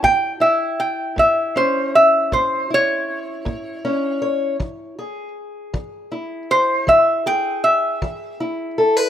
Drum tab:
BD |o--o--o--o--|o--o--o--o--|